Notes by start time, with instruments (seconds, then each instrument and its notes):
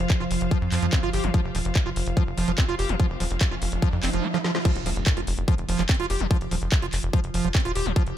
Already playing: ambient pad F3, string section F4 C5 F5
0.10 kick, clap, closed hi-hat
0.20 analog synth bass F1, acid bass F4
0.31 analog synth bass F1, open hi-hat
0.41 analog synth bass F1, closed hi-hat
0.51 acid bass F3, kick, closed hi-hat
0.62 analog synth bass F2
0.72 analog synth bass F2, acid bass F3, clap, open hi-hat
0.82 analog synth bass F2, acid bass F3, closed hi-hat
0.93 acid bass C4, kick, clap, closed hi-hat
1.03 analog synth bass G1, acid bass F4
1.13 analog synth bass G1, acid bass G4, open hi-hat
1.24 analog synth bass G1, acid bass D#3, closed hi-hat
1.34 acid bass F3, kick, closed hi-hat, riser
1.44 analog synth bass F1
1.55 analog synth bass D#1, acid bass F3, open hi-hat
1.65 analog synth bass F1, closed hi-hat
1.75 kick, clap, closed hi-hat
1.86 analog synth bass F1, acid bass F4
1.96 analog synth bass F1, open hi-hat
2.06 analog synth bass F1, closed hi-hat
2.17 acid bass F3, kick, closed hi-hat
2.27 analog synth bass F1
2.38 analog synth bass F1, acid bass F3, open hi-hat
2.48 analog synth bass F1, acid bass F3, closed hi-hat
2.58 acid bass C4, kick, clap, closed hi-hat
2.69 analog synth bass F1, acid bass F4
2.79 analog synth bass F1, acid bass G4, open hi-hat
2.89 analog synth bass F1, acid bass D#3, closed hi-hat
3.00 acid bass F3, kick, closed hi-hat
3.10 analog synth bass F1
3.20 analog synth bass D#1, acid bass F3, open hi-hat
3.31 analog synth bass F1, closed hi-hat
3.41 kick, clap, closed hi-hat
3.51 analog synth bass F1, acid bass F4
3.62 analog synth bass F1, open hi-hat
3.72 analog synth bass F1, closed hi-hat
3.82 acid bass F3, kick, closed hi-hat
3.93 analog synth bass F2
4.03 analog synth bass F1, acid bass C4, clap, open hi-hat
4.13 analog synth bass F1, acid bass F3, closed hi-hat
4.24 acid bass C4
4.34 acid bass F3, snare
4.44 acid bass F3, snare
4.55 acid bass F3, snare
4.65 acid bass F3, ambient pad F3, kick, closed hi-hat, crash, impact
4.75 analog synth bass F1, closed hi-hat
4.86 analog synth bass D#1, acid bass F3, open hi-hat
4.96 analog synth bass F1, closed hi-hat
5.07 kick, clap, closed hi-hat
5.17 analog synth bass F1, acid bass F4, closed hi-hat
5.27 analog synth bass F1, open hi-hat
5.38 analog synth bass F1, closed hi-hat
5.48 acid bass F3, kick, closed hi-hat
5.58 analog synth bass F1, closed hi-hat
5.69 analog synth bass F1, acid bass F3, open hi-hat
5.79 analog synth bass F1, acid bass F3, clap, closed hi-hat
5.89 acid bass C4, kick, clap, closed hi-hat
5.94 closed hi-hat
6.00 analog synth bass F1, acid bass F4, closed hi-hat
6.10 analog synth bass F1, acid bass G4, open hi-hat
6.20 analog synth bass F1, acid bass D#3, closed hi-hat
6.31 acid bass F3, kick, closed hi-hat
6.41 analog synth bass F1, closed hi-hat
6.51 analog synth bass D#1, acid bass F3, open hi-hat
6.62 analog synth bass F1, closed hi-hat
6.72 kick, clap, closed hi-hat
6.82 analog synth bass F1, acid bass F4, closed hi-hat
6.93 analog synth bass F1, clap, open hi-hat
7.03 analog synth bass F1
7.13 acid bass F3, kick, closed hi-hat
7.24 analog synth bass F1, closed hi-hat
7.34 analog synth bass F1, acid bass F3, open hi-hat
7.44 analog synth bass F1, acid bass F3, closed hi-hat
7.55 acid bass C4, kick, clap, closed hi-hat
7.60 closed hi-hat
7.65 analog synth bass D#1, acid bass F4, closed hi-hat
7.75 analog synth bass D#1, acid bass G4, open hi-hat
7.86 analog synth bass D#1, acid bass D#3, closed hi-hat
7.96 acid bass F3, kick, closed hi-hat
8.07 analog synth bass F1, closed hi-hat